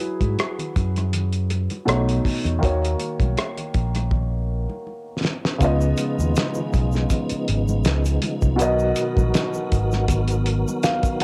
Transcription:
Already playing: F#3 E4 G#4 B4
0.02 muted conga
0.21 G#2, kick, closed hi-hat, high conga
0.38 cross-stick, closed hi-hat, high conga
0.59 closed hi-hat, low conga
0.76 F#2, kick, closed hi-hat, muted conga
0.96 cross-stick, closed hi-hat, high conga
1.13 closed hi-hat, low conga
1.32 closed hi-hat
1.50 closed hi-hat, muted conga
1.70 closed hi-hat, high conga
1.85 B1 B2 A3 D#4 C#5, cross-stick, closed hi-hat
2.09 closed hi-hat
2.25 kick, open hi-hat, muted conga, high conga, low conga
2.45 E2, closed hi-hat
2.59 D#3 A#3
2.63 D#2 F#4 C#5, kick, closed hi-hat
2.85 closed hi-hat
3.00 closed hi-hat, muted conga
3.20 B1, kick, closed hi-hat, high conga
3.37 cross-stick, closed hi-hat, high conga
3.58 closed hi-hat, low conga
3.74 A#1, kick, closed hi-hat
3.95 cross-stick, closed hi-hat, high conga
4.11 kick, low conga
4.70 high conga
4.87 muted conga
5.24 snare, muted conga, high conga, low conga
5.45 snare
5.58 C#2 C#3 F3 G#3 B3 D#4, kick, closed hi-hat, shaker
5.63 F4 D#5
5.81 shaker
5.97 closed hi-hat, muted conga, shaker
6.19 D#2, high conga, shaker
6.35 snare, closed hi-hat, muted conga, high conga, shaker
6.54 low conga, shaker
6.73 B1, kick, closed hi-hat, muted conga, shaker
6.92 snare, high conga, shaker
7.10 kick, closed hi-hat, muted conga, low conga, shaker
7.29 muted fingered electric bass stroke, closed hi-hat, shaker
7.48 G#1, closed hi-hat
7.68 high conga, shaker
7.84 C#2, snare, closed hi-hat, shaker
8.05 closed hi-hat, shaker
8.22 closed hi-hat, muted conga, high conga, low conga
8.42 C2, kick, shaker
8.56 B2 D#3 F#3 B3 F#4 A#4, closed hi-hat, shaker
8.61 B1 A#4 D#5
8.79 shaker
8.96 closed hi-hat, muted conga, shaker
9.17 A#1, kick, high conga, shaker
9.34 snare, closed hi-hat, muted conga, high conga, shaker
9.54 low conga, shaker
9.72 G#1, kick, closed hi-hat, muted conga, shaker
9.92 snare, high conga, shaker
10.08 kick, closed hi-hat, low conga, shaker
10.28 closed hi-hat, shaker
10.46 closed hi-hat, muted conga
10.67 high conga, shaker
10.83 F5, snare, closed hi-hat, muted conga, shaker
11.03 kick, closed hi-hat, shaker
11.20 closed hi-hat, muted conga, high conga, low conga

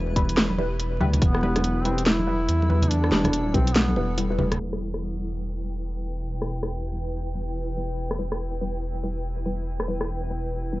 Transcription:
Already playing: E1 G3 E4 B4
0.16 G3 E4 B4, kick, closed hi-hat
0.29 closed hi-hat
0.37 snare, closed hi-hat
0.50 high conga
0.58 G3 E4 B4, muted conga
0.80 closed hi-hat
1.01 D2 G3 E4 B4, high conga, low conga
1.14 closed hi-hat, low conga
1.21 E1 B3 A4, kick, closed hi-hat
1.35 cross-stick
1.43 G3 E4 B4, muted conga
1.56 cross-stick, closed hi-hat, muted conga, high conga
1.64 closed hi-hat
1.85 G3 C4 E4 B4, closed hi-hat
1.98 closed hi-hat
2.05 E4, snare, closed hi-hat
2.19 high conga
2.27 G3 E4 B4
2.49 E2, closed hi-hat
2.62 muted conga
2.70 G3 E4 B4, high conga
2.82 closed hi-hat, low conga
2.90 D4, closed hi-hat
3.04 cross-stick
3.12 E1 G3 E4 B4, snare, muted conga
3.24 cross-stick, closed hi-hat, muted conga, high conga, low conga
3.33 closed hi-hat
3.54 B1 G3 C4 E4 B4, kick, closed hi-hat
3.67 closed hi-hat
3.75 B3, snare, closed hi-hat
3.89 high conga
3.96 E1 G3 E4 B4, muted conga
4.18 G3 E4 B4, closed hi-hat
4.30 G3 E4 B4
4.39 E1 G3 E4 B4, high conga, low conga
4.52 cross-stick, closed hi-hat, low conga
4.60 E1 E4 B4 G5
4.73 cross-stick
4.81 G3
4.94 cross-stick
5.23 G3 E4 B4
5.65 G3 E4 B4
6.07 G3 E4 B4
6.42 cross-stick
6.50 G3 E4
6.63 cross-stick
6.92 G3 E4 B4
7.34 G3 E4 B4
7.77 G3 E4 B4
8.11 cross-stick
8.19 G3 E4 B4
8.32 cross-stick
8.61 G3 E4 B4
9.03 G3 E4 B4
9.46 G3 E4 B4
9.80 cross-stick
9.88 G3 E4 B4
10.01 cross-stick
10.30 G3 E4 B4
10.72 G3 E4 B4

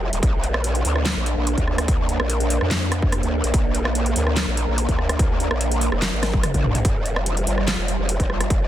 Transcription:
Already playing: F1 G3 F4 C5
0.13 D#1, closed hi-hat
0.23 A#1 A#3 D4, kick, closed hi-hat
0.44 closed hi-hat
0.54 cross-stick
0.64 closed hi-hat
0.75 closed hi-hat
0.85 D2, open hi-hat
0.96 cross-stick
1.06 snare, clap, closed hi-hat
1.16 A#1
1.26 closed hi-hat
1.37 A#1
1.47 closed hi-hat
1.58 D2, kick, closed hi-hat
1.68 cross-stick
1.78 cross-stick, closed hi-hat
1.88 kick, closed hi-hat
2.09 closed hi-hat
2.20 A#1, cross-stick
2.30 closed hi-hat
2.40 closed hi-hat
2.50 open hi-hat
2.61 F2, cross-stick
2.71 snare, clap, closed hi-hat
2.92 cross-stick, closed hi-hat
3.02 kick
3.12 cross-stick, closed hi-hat
3.23 D2, closed hi-hat
3.44 A#1, closed hi-hat
3.54 A#1 A#4, kick, closed hi-hat
3.75 closed hi-hat
3.85 cross-stick
3.95 closed hi-hat
4.06 closed hi-hat
4.16 D2, open hi-hat
4.27 cross-stick
4.37 snare, clap, closed hi-hat
4.47 A#1
4.57 closed hi-hat
4.68 A#1
4.78 closed hi-hat
4.89 D2, kick, closed hi-hat
4.99 cross-stick
5.09 cross-stick, closed hi-hat
5.19 kick, closed hi-hat
5.40 closed hi-hat
5.51 A#1, cross-stick
5.61 closed hi-hat
5.71 closed hi-hat
5.81 open hi-hat
5.92 F1, cross-stick
6.02 snare, clap, closed hi-hat
6.13 G#1
6.23 cross-stick, snare, closed hi-hat, high tom
6.34 kick, high tom
6.43 cross-stick, closed hi-hat, mid tom
6.54 A#1, kick, closed hi-hat, mid tom
6.64 mid tom
6.75 closed hi-hat, mid tom
6.85 F1 G3 F4 C5, kick, closed hi-hat
7.06 closed hi-hat
7.16 cross-stick
7.26 closed hi-hat
7.37 closed hi-hat
7.47 G1, open hi-hat
7.58 cross-stick
7.68 snare, clap, closed hi-hat
7.78 F1
7.88 closed hi-hat
7.99 F1
8.09 closed hi-hat
8.20 G1, kick, closed hi-hat
8.30 cross-stick
8.40 cross-stick, closed hi-hat
8.50 kick, closed hi-hat

